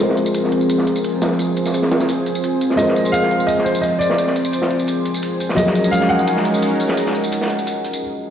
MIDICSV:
0, 0, Header, 1, 5, 480
1, 0, Start_track
1, 0, Time_signature, 4, 2, 24, 8
1, 0, Key_signature, -4, "major"
1, 0, Tempo, 348837
1, 11424, End_track
2, 0, Start_track
2, 0, Title_t, "Grand piano"
2, 0, Program_c, 0, 0
2, 3815, Note_on_c, 0, 75, 103
2, 4294, Note_on_c, 0, 77, 101
2, 4321, Note_off_c, 0, 75, 0
2, 4751, Note_off_c, 0, 77, 0
2, 4772, Note_on_c, 0, 75, 98
2, 5014, Note_on_c, 0, 72, 82
2, 5032, Note_off_c, 0, 75, 0
2, 5248, Note_on_c, 0, 75, 90
2, 5273, Note_off_c, 0, 72, 0
2, 5487, Note_on_c, 0, 74, 97
2, 5511, Note_off_c, 0, 75, 0
2, 6887, Note_off_c, 0, 74, 0
2, 7657, Note_on_c, 0, 75, 100
2, 8137, Note_on_c, 0, 77, 100
2, 8162, Note_off_c, 0, 75, 0
2, 8379, Note_on_c, 0, 78, 98
2, 8395, Note_off_c, 0, 77, 0
2, 10973, Note_off_c, 0, 78, 0
2, 11424, End_track
3, 0, Start_track
3, 0, Title_t, "Felt piano"
3, 0, Program_c, 1, 0
3, 0, Control_c, 1, 64, 127
3, 0, Note_on_c, 1, 56, 76
3, 0, Note_on_c, 1, 65, 70
3, 14, Note_on_c, 1, 70, 70
3, 41, Note_on_c, 1, 72, 83
3, 3776, Note_off_c, 1, 56, 0
3, 3796, Note_on_c, 1, 56, 74
3, 3802, Note_off_c, 1, 65, 0
3, 3818, Note_off_c, 1, 70, 0
3, 3825, Note_on_c, 1, 65, 68
3, 3831, Note_off_c, 1, 72, 0
3, 3856, Note_on_c, 1, 70, 69
3, 3883, Note_on_c, 1, 72, 84
3, 7629, Note_off_c, 1, 56, 0
3, 7634, Note_on_c, 1, 54, 78
3, 7643, Note_off_c, 1, 65, 0
3, 7657, Note_on_c, 1, 53, 69
3, 7658, Note_off_c, 1, 70, 0
3, 7672, Note_off_c, 1, 72, 0
3, 7677, Note_on_c, 1, 68, 71
3, 7694, Control_c, 1, 64, 0
3, 7700, Note_on_c, 1, 70, 70
3, 7720, Note_on_c, 1, 75, 83
3, 7922, Control_c, 1, 64, 127
3, 11016, Note_off_c, 1, 54, 0
3, 11027, Note_off_c, 1, 53, 0
3, 11037, Note_off_c, 1, 68, 0
3, 11049, Note_off_c, 1, 70, 0
3, 11059, Note_off_c, 1, 75, 0
3, 11424, End_track
4, 0, Start_track
4, 0, Title_t, "Analog synth pad"
4, 0, Program_c, 2, 89
4, 0, Note_on_c, 2, 53, 75
4, 0, Note_on_c, 2, 60, 73
4, 0, Note_on_c, 2, 68, 71
4, 0, Note_on_c, 2, 70, 89
4, 1864, Note_off_c, 2, 70, 0
4, 1915, Note_on_c, 2, 72, 86
4, 7621, Note_off_c, 2, 72, 0
4, 7622, Note_off_c, 2, 68, 0
4, 7624, Note_off_c, 2, 53, 0
4, 7625, Note_off_c, 2, 60, 0
4, 7673, Note_on_c, 2, 68, 75
4, 7675, Note_on_c, 2, 56, 79
4, 7675, Note_on_c, 2, 61, 70
4, 7675, Note_on_c, 2, 63, 75
4, 7677, Note_on_c, 2, 70, 85
4, 11002, Note_off_c, 2, 61, 0
4, 11002, Note_off_c, 2, 68, 0
4, 11003, Note_off_c, 2, 56, 0
4, 11003, Note_off_c, 2, 63, 0
4, 11004, Note_off_c, 2, 70, 0
4, 11424, End_track
5, 0, Start_track
5, 0, Title_t, "Drums"
5, 125, Note_on_c, 9, 38, 51
5, 229, Note_on_c, 9, 42, 67
5, 236, Note_off_c, 9, 42, 0
5, 236, Note_on_c, 9, 42, 62
5, 236, Note_on_c, 9, 54, 25
5, 263, Note_off_c, 9, 38, 0
5, 358, Note_off_c, 9, 54, 0
5, 358, Note_on_c, 9, 54, 50
5, 374, Note_off_c, 9, 42, 0
5, 468, Note_on_c, 9, 42, 90
5, 476, Note_off_c, 9, 42, 0
5, 476, Note_off_c, 9, 54, 0
5, 476, Note_on_c, 9, 42, 82
5, 476, Note_on_c, 9, 54, 43
5, 602, Note_on_c, 9, 38, 37
5, 613, Note_off_c, 9, 42, 0
5, 613, Note_off_c, 9, 54, 0
5, 713, Note_on_c, 9, 42, 63
5, 716, Note_off_c, 9, 42, 0
5, 716, Note_on_c, 9, 42, 64
5, 740, Note_off_c, 9, 38, 0
5, 839, Note_on_c, 9, 54, 25
5, 854, Note_off_c, 9, 42, 0
5, 949, Note_on_c, 9, 42, 76
5, 957, Note_off_c, 9, 42, 0
5, 957, Note_off_c, 9, 54, 0
5, 957, Note_on_c, 9, 42, 87
5, 957, Note_on_c, 9, 54, 46
5, 1075, Note_on_c, 9, 38, 39
5, 1095, Note_off_c, 9, 42, 0
5, 1095, Note_off_c, 9, 54, 0
5, 1196, Note_on_c, 9, 42, 68
5, 1197, Note_off_c, 9, 42, 0
5, 1197, Note_on_c, 9, 42, 61
5, 1197, Note_on_c, 9, 54, 25
5, 1212, Note_off_c, 9, 38, 0
5, 1319, Note_off_c, 9, 54, 0
5, 1319, Note_on_c, 9, 54, 51
5, 1335, Note_off_c, 9, 42, 0
5, 1436, Note_on_c, 9, 46, 74
5, 1437, Note_off_c, 9, 54, 0
5, 1437, Note_on_c, 9, 42, 88
5, 1437, Note_on_c, 9, 54, 26
5, 1573, Note_off_c, 9, 46, 0
5, 1574, Note_off_c, 9, 42, 0
5, 1574, Note_off_c, 9, 54, 0
5, 1676, Note_on_c, 9, 42, 60
5, 1676, Note_on_c, 9, 54, 46
5, 1677, Note_on_c, 9, 38, 97
5, 1683, Note_off_c, 9, 42, 0
5, 1683, Note_on_c, 9, 42, 80
5, 1800, Note_off_c, 9, 38, 0
5, 1800, Note_on_c, 9, 38, 35
5, 1814, Note_off_c, 9, 54, 0
5, 1821, Note_off_c, 9, 42, 0
5, 1906, Note_on_c, 9, 42, 62
5, 1916, Note_off_c, 9, 42, 0
5, 1916, Note_on_c, 9, 42, 82
5, 1916, Note_on_c, 9, 54, 47
5, 1937, Note_off_c, 9, 38, 0
5, 2054, Note_off_c, 9, 42, 0
5, 2054, Note_off_c, 9, 54, 0
5, 2149, Note_on_c, 9, 42, 75
5, 2158, Note_off_c, 9, 42, 0
5, 2158, Note_on_c, 9, 42, 59
5, 2158, Note_on_c, 9, 54, 26
5, 2275, Note_on_c, 9, 38, 31
5, 2279, Note_off_c, 9, 54, 0
5, 2279, Note_on_c, 9, 54, 51
5, 2295, Note_off_c, 9, 42, 0
5, 2392, Note_on_c, 9, 42, 89
5, 2397, Note_off_c, 9, 42, 0
5, 2397, Note_off_c, 9, 54, 0
5, 2397, Note_on_c, 9, 42, 83
5, 2397, Note_on_c, 9, 54, 46
5, 2412, Note_off_c, 9, 38, 0
5, 2509, Note_on_c, 9, 38, 52
5, 2534, Note_off_c, 9, 42, 0
5, 2534, Note_off_c, 9, 54, 0
5, 2628, Note_on_c, 9, 42, 82
5, 2636, Note_off_c, 9, 38, 0
5, 2636, Note_on_c, 9, 38, 104
5, 2637, Note_off_c, 9, 42, 0
5, 2637, Note_on_c, 9, 42, 63
5, 2745, Note_off_c, 9, 42, 0
5, 2745, Note_on_c, 9, 42, 79
5, 2750, Note_off_c, 9, 38, 0
5, 2750, Note_on_c, 9, 38, 92
5, 2757, Note_on_c, 9, 54, 26
5, 2874, Note_off_c, 9, 42, 0
5, 2874, Note_off_c, 9, 54, 0
5, 2874, Note_on_c, 9, 42, 86
5, 2874, Note_on_c, 9, 54, 44
5, 2880, Note_off_c, 9, 42, 0
5, 2880, Note_on_c, 9, 42, 85
5, 2888, Note_off_c, 9, 38, 0
5, 3012, Note_off_c, 9, 54, 0
5, 3017, Note_off_c, 9, 42, 0
5, 3114, Note_on_c, 9, 42, 67
5, 3116, Note_off_c, 9, 42, 0
5, 3116, Note_on_c, 9, 42, 57
5, 3116, Note_on_c, 9, 54, 26
5, 3237, Note_off_c, 9, 54, 0
5, 3237, Note_on_c, 9, 54, 52
5, 3253, Note_off_c, 9, 42, 0
5, 3355, Note_off_c, 9, 54, 0
5, 3355, Note_on_c, 9, 42, 83
5, 3355, Note_on_c, 9, 54, 26
5, 3358, Note_off_c, 9, 42, 0
5, 3358, Note_on_c, 9, 42, 78
5, 3493, Note_off_c, 9, 54, 0
5, 3496, Note_off_c, 9, 42, 0
5, 3591, Note_on_c, 9, 42, 60
5, 3596, Note_off_c, 9, 42, 0
5, 3596, Note_on_c, 9, 42, 60
5, 3596, Note_on_c, 9, 54, 44
5, 3719, Note_on_c, 9, 38, 47
5, 3734, Note_off_c, 9, 42, 0
5, 3734, Note_off_c, 9, 54, 0
5, 3834, Note_on_c, 9, 42, 75
5, 3837, Note_off_c, 9, 42, 0
5, 3837, Note_on_c, 9, 42, 83
5, 3837, Note_on_c, 9, 54, 46
5, 3857, Note_off_c, 9, 38, 0
5, 3967, Note_on_c, 9, 38, 46
5, 3975, Note_off_c, 9, 42, 0
5, 3975, Note_off_c, 9, 54, 0
5, 4067, Note_on_c, 9, 42, 64
5, 4077, Note_off_c, 9, 42, 0
5, 4077, Note_on_c, 9, 42, 62
5, 4077, Note_on_c, 9, 54, 27
5, 4105, Note_off_c, 9, 38, 0
5, 4200, Note_off_c, 9, 54, 0
5, 4200, Note_on_c, 9, 54, 54
5, 4215, Note_off_c, 9, 42, 0
5, 4319, Note_off_c, 9, 54, 0
5, 4319, Note_on_c, 9, 42, 82
5, 4319, Note_on_c, 9, 54, 49
5, 4320, Note_off_c, 9, 42, 0
5, 4320, Note_on_c, 9, 42, 87
5, 4441, Note_on_c, 9, 38, 34
5, 4457, Note_off_c, 9, 42, 0
5, 4457, Note_off_c, 9, 54, 0
5, 4557, Note_on_c, 9, 42, 64
5, 4561, Note_off_c, 9, 42, 0
5, 4561, Note_on_c, 9, 42, 63
5, 4578, Note_off_c, 9, 38, 0
5, 4679, Note_on_c, 9, 54, 28
5, 4698, Note_off_c, 9, 42, 0
5, 4796, Note_off_c, 9, 54, 0
5, 4796, Note_on_c, 9, 42, 82
5, 4796, Note_on_c, 9, 54, 46
5, 4807, Note_off_c, 9, 42, 0
5, 4807, Note_on_c, 9, 42, 83
5, 4932, Note_on_c, 9, 38, 36
5, 4933, Note_off_c, 9, 54, 0
5, 4945, Note_off_c, 9, 42, 0
5, 5037, Note_on_c, 9, 42, 60
5, 5037, Note_on_c, 9, 54, 27
5, 5039, Note_off_c, 9, 42, 0
5, 5039, Note_on_c, 9, 42, 65
5, 5069, Note_off_c, 9, 38, 0
5, 5158, Note_off_c, 9, 54, 0
5, 5158, Note_on_c, 9, 54, 56
5, 5177, Note_off_c, 9, 42, 0
5, 5274, Note_on_c, 9, 46, 73
5, 5276, Note_off_c, 9, 54, 0
5, 5276, Note_on_c, 9, 42, 84
5, 5276, Note_on_c, 9, 54, 27
5, 5411, Note_off_c, 9, 46, 0
5, 5413, Note_off_c, 9, 42, 0
5, 5413, Note_off_c, 9, 54, 0
5, 5516, Note_on_c, 9, 42, 63
5, 5516, Note_on_c, 9, 54, 47
5, 5520, Note_off_c, 9, 42, 0
5, 5520, Note_on_c, 9, 42, 60
5, 5637, Note_on_c, 9, 38, 57
5, 5654, Note_off_c, 9, 54, 0
5, 5658, Note_off_c, 9, 42, 0
5, 5758, Note_on_c, 9, 42, 84
5, 5758, Note_on_c, 9, 54, 50
5, 5761, Note_off_c, 9, 42, 0
5, 5761, Note_on_c, 9, 42, 77
5, 5774, Note_off_c, 9, 38, 0
5, 5878, Note_on_c, 9, 38, 38
5, 5895, Note_off_c, 9, 54, 0
5, 5898, Note_off_c, 9, 42, 0
5, 5998, Note_on_c, 9, 42, 63
5, 5998, Note_on_c, 9, 54, 29
5, 6000, Note_off_c, 9, 42, 0
5, 6000, Note_on_c, 9, 42, 69
5, 6016, Note_off_c, 9, 38, 0
5, 6120, Note_off_c, 9, 54, 0
5, 6120, Note_on_c, 9, 54, 57
5, 6138, Note_off_c, 9, 42, 0
5, 6222, Note_on_c, 9, 42, 85
5, 6238, Note_off_c, 9, 42, 0
5, 6238, Note_off_c, 9, 54, 0
5, 6238, Note_on_c, 9, 42, 85
5, 6238, Note_on_c, 9, 54, 48
5, 6354, Note_on_c, 9, 38, 53
5, 6376, Note_off_c, 9, 42, 0
5, 6376, Note_off_c, 9, 54, 0
5, 6476, Note_on_c, 9, 42, 64
5, 6482, Note_off_c, 9, 42, 0
5, 6482, Note_on_c, 9, 42, 66
5, 6492, Note_off_c, 9, 38, 0
5, 6588, Note_off_c, 9, 42, 0
5, 6588, Note_on_c, 9, 42, 41
5, 6598, Note_on_c, 9, 54, 27
5, 6704, Note_off_c, 9, 42, 0
5, 6704, Note_on_c, 9, 42, 78
5, 6715, Note_off_c, 9, 42, 0
5, 6715, Note_off_c, 9, 54, 0
5, 6715, Note_on_c, 9, 42, 84
5, 6715, Note_on_c, 9, 54, 52
5, 6852, Note_off_c, 9, 42, 0
5, 6852, Note_off_c, 9, 54, 0
5, 6948, Note_on_c, 9, 42, 63
5, 6956, Note_off_c, 9, 42, 0
5, 6956, Note_on_c, 9, 42, 62
5, 6956, Note_on_c, 9, 54, 26
5, 7078, Note_off_c, 9, 54, 0
5, 7078, Note_on_c, 9, 54, 57
5, 7094, Note_off_c, 9, 42, 0
5, 7189, Note_on_c, 9, 42, 80
5, 7196, Note_off_c, 9, 42, 0
5, 7196, Note_off_c, 9, 54, 0
5, 7196, Note_on_c, 9, 42, 90
5, 7196, Note_on_c, 9, 54, 28
5, 7334, Note_off_c, 9, 42, 0
5, 7334, Note_off_c, 9, 54, 0
5, 7431, Note_on_c, 9, 42, 66
5, 7436, Note_off_c, 9, 42, 0
5, 7436, Note_on_c, 9, 42, 63
5, 7436, Note_on_c, 9, 54, 48
5, 7559, Note_on_c, 9, 38, 48
5, 7574, Note_off_c, 9, 42, 0
5, 7574, Note_off_c, 9, 54, 0
5, 7677, Note_on_c, 9, 42, 88
5, 7677, Note_on_c, 9, 54, 50
5, 7685, Note_off_c, 9, 42, 0
5, 7685, Note_on_c, 9, 42, 74
5, 7697, Note_off_c, 9, 38, 0
5, 7798, Note_on_c, 9, 38, 52
5, 7814, Note_off_c, 9, 54, 0
5, 7822, Note_off_c, 9, 42, 0
5, 7914, Note_on_c, 9, 42, 70
5, 7916, Note_off_c, 9, 42, 0
5, 7916, Note_on_c, 9, 42, 66
5, 7916, Note_on_c, 9, 54, 27
5, 7935, Note_off_c, 9, 38, 0
5, 8040, Note_off_c, 9, 54, 0
5, 8040, Note_on_c, 9, 54, 56
5, 8054, Note_off_c, 9, 42, 0
5, 8155, Note_on_c, 9, 42, 82
5, 8157, Note_off_c, 9, 42, 0
5, 8157, Note_off_c, 9, 54, 0
5, 8157, Note_on_c, 9, 42, 95
5, 8157, Note_on_c, 9, 54, 48
5, 8266, Note_on_c, 9, 38, 35
5, 8294, Note_off_c, 9, 42, 0
5, 8294, Note_off_c, 9, 54, 0
5, 8396, Note_on_c, 9, 42, 68
5, 8397, Note_off_c, 9, 42, 0
5, 8397, Note_on_c, 9, 42, 64
5, 8404, Note_off_c, 9, 38, 0
5, 8518, Note_on_c, 9, 54, 28
5, 8535, Note_off_c, 9, 42, 0
5, 8630, Note_on_c, 9, 42, 76
5, 8636, Note_off_c, 9, 42, 0
5, 8636, Note_off_c, 9, 54, 0
5, 8636, Note_on_c, 9, 42, 93
5, 8636, Note_on_c, 9, 54, 50
5, 8760, Note_on_c, 9, 38, 36
5, 8774, Note_off_c, 9, 42, 0
5, 8774, Note_off_c, 9, 54, 0
5, 8867, Note_on_c, 9, 42, 68
5, 8877, Note_off_c, 9, 42, 0
5, 8877, Note_on_c, 9, 42, 64
5, 8877, Note_on_c, 9, 54, 29
5, 8898, Note_off_c, 9, 38, 0
5, 8999, Note_off_c, 9, 54, 0
5, 8999, Note_on_c, 9, 54, 58
5, 9014, Note_off_c, 9, 42, 0
5, 9108, Note_on_c, 9, 46, 71
5, 9118, Note_off_c, 9, 54, 0
5, 9118, Note_on_c, 9, 42, 92
5, 9118, Note_on_c, 9, 54, 28
5, 9245, Note_off_c, 9, 46, 0
5, 9255, Note_off_c, 9, 42, 0
5, 9255, Note_off_c, 9, 54, 0
5, 9355, Note_on_c, 9, 42, 62
5, 9355, Note_on_c, 9, 54, 51
5, 9359, Note_off_c, 9, 42, 0
5, 9359, Note_on_c, 9, 42, 66
5, 9469, Note_on_c, 9, 38, 52
5, 9492, Note_off_c, 9, 54, 0
5, 9496, Note_off_c, 9, 42, 0
5, 9593, Note_on_c, 9, 42, 77
5, 9595, Note_off_c, 9, 42, 0
5, 9595, Note_on_c, 9, 42, 91
5, 9595, Note_on_c, 9, 54, 49
5, 9607, Note_off_c, 9, 38, 0
5, 9717, Note_on_c, 9, 38, 39
5, 9733, Note_off_c, 9, 42, 0
5, 9733, Note_off_c, 9, 54, 0
5, 9830, Note_on_c, 9, 42, 64
5, 9837, Note_off_c, 9, 42, 0
5, 9837, Note_on_c, 9, 42, 66
5, 9837, Note_on_c, 9, 54, 28
5, 9855, Note_off_c, 9, 38, 0
5, 9959, Note_off_c, 9, 54, 0
5, 9959, Note_on_c, 9, 54, 58
5, 9974, Note_off_c, 9, 42, 0
5, 10069, Note_on_c, 9, 42, 88
5, 10078, Note_off_c, 9, 42, 0
5, 10078, Note_off_c, 9, 54, 0
5, 10078, Note_on_c, 9, 42, 92
5, 10078, Note_on_c, 9, 54, 49
5, 10202, Note_on_c, 9, 38, 49
5, 10215, Note_off_c, 9, 42, 0
5, 10215, Note_off_c, 9, 54, 0
5, 10315, Note_on_c, 9, 42, 71
5, 10316, Note_off_c, 9, 42, 0
5, 10316, Note_on_c, 9, 42, 70
5, 10340, Note_off_c, 9, 38, 0
5, 10436, Note_off_c, 9, 42, 0
5, 10436, Note_on_c, 9, 42, 47
5, 10439, Note_on_c, 9, 54, 28
5, 10547, Note_off_c, 9, 42, 0
5, 10547, Note_on_c, 9, 42, 80
5, 10556, Note_off_c, 9, 42, 0
5, 10556, Note_off_c, 9, 54, 0
5, 10556, Note_on_c, 9, 42, 90
5, 10556, Note_on_c, 9, 54, 51
5, 10693, Note_off_c, 9, 42, 0
5, 10693, Note_off_c, 9, 54, 0
5, 10796, Note_on_c, 9, 42, 65
5, 10796, Note_on_c, 9, 54, 28
5, 10805, Note_off_c, 9, 42, 0
5, 10805, Note_on_c, 9, 42, 66
5, 10918, Note_off_c, 9, 54, 0
5, 10918, Note_on_c, 9, 54, 59
5, 10942, Note_off_c, 9, 42, 0
5, 11056, Note_off_c, 9, 54, 0
5, 11424, End_track
0, 0, End_of_file